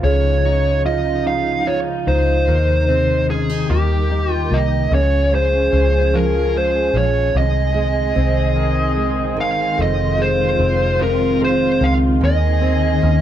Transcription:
Already playing: F4 C5
0.03 C#2 C#3 F3 G#3 D#4 C#5
0.45 D#4
0.85 F4 D#5
1.26 D#4 F5
1.67 F4 C#5
2.07 C#2 D#4 C5
2.48 D#2 C3 D#3 G#3
2.88 C4
3.30 C#4 G#4
3.49 D#4
3.69 D#2 D#3 G3 A#3 G4
4.10 D#4
4.33 F4
4.51 C2 A#3 D#5
4.90 C#2 C#3 F3 G#3 C#4 G#4
4.94 C#5
5.32 G#3 C5
5.72 C#2 C#4
6.14 F3 A#4
6.54 G#3 C5
6.94 A#1 F3 C#5
7.34 C2 C3 D#3 C4 G#4 D#5
7.74 G#3
8.15 C2 C4
8.55 D#3
8.96 G#3
9.37 G1 D#3
9.41 F5
9.77 F1 F2 F4
9.82 D#5
10.18 G#3
10.22 C5
10.59 F1 C4
10.99 C3 A#4
11.40 G#3
11.44 C5
11.80 C#2 D#3 F5
12.21 D#2 D#3 C4 G#4 D#5
12.61 C4
13.02 D#2 C#4

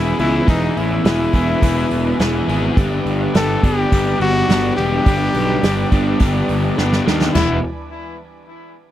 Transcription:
Already playing: E1 E2 B2 E3 B3 E4 G#4 B4 E5 G#5 E6
0.19 C#2 E2 B2 E3 B3 E4 G#4, open hi-hat
0.48 E1 E2 B2 E3 B3 D#4 E4 G#4, kick, open hi-hat
0.77 A1 E4, open hi-hat
1.05 E1 E2 B2 E3 B3 E4 G#4, snare, open hi-hat
1.33 E1 E2 B2 E3 B3 E4 G#4, kick, open hi-hat
1.62 E1 E2 B2 E3 B3 E4 G#4, kick, open hi-hat
1.91 E1, open hi-hat
2.20 E1 E2 B2 E3 B3 E4 G#4, snare, open hi-hat
2.48 G#1 E2 B2 E3 B3 E4 G#4, open hi-hat
2.77 G1 G2 D3 G3 B3 D4 G4 D5 D6, kick, open hi-hat
3.06 G1, open hi-hat
3.35 G1 G2 D3 G3 B3 D4 G4 A4, snare, open hi-hat
3.63 G1 G2 D3 G3 B3 D4 G4, kick, open hi-hat
3.92 G1 G2 D3 G3 B3 D4 G4, kick, open hi-hat
4.20 G1 F#4, open hi-hat
4.49 G1 G2 D3 G3 B3 D4 G4, snare, open hi-hat
4.76 E1 G2 D3 G3 B3 D4 G4, open hi-hat
5.06 G1 G2 D3 G3 B3 D4 G4 A5, kick, open hi-hat
5.35 B1, open hi-hat
5.63 G1 G2 D3 G3 B3 D4 G4, snare, open hi-hat
5.92 G1 G2 D3 G3 B3 D4 G4, kick, open hi-hat
6.20 G1 G2 D3 G3 B3 D4 G4, kick, open hi-hat
6.49 G1, open hi-hat
6.77 G1 G2 D3 G3 B3 D4 G4, snare
6.93 snare
7.06 D#2 G2 D3 G3 B3 D4 G4, snare
7.21 snare
7.33 E1 E3 G#3 B3 E4 B4 G#5 B5, snare, floor tom, crash

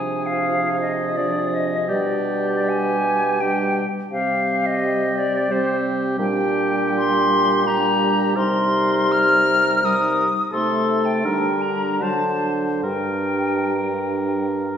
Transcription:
Already playing: C3 F3 D4 G#4 G#5
0.26 F5
0.81 D#5
1.17 F3 D4 G#4 D5
1.53 D#5
1.89 B2 G3 D4 G4 D5
2.69 G#5
3.40 G3 D4 G4 G5
4.11 C3 G3 C4 G4 F5
4.66 D#5
5.18 D5
5.50 G3 C4 G4 C5
6.18 A#2 G3 D4 G4 G5
6.96 C6
7.65 G3 D4 G4 A#5
8.35 C3 G3 D#4 A#4 C6
9.12 F6
9.82 G3 D#4 A#4 D#6
10.52 C3 A3 D#4 A4 C6
11.05 G5
11.25 D3 G3 D4 A#4
11.62 A#5
12.00 D3 F#3 D4 C5 A5
12.83 G2 G3 D4 A#4 G5

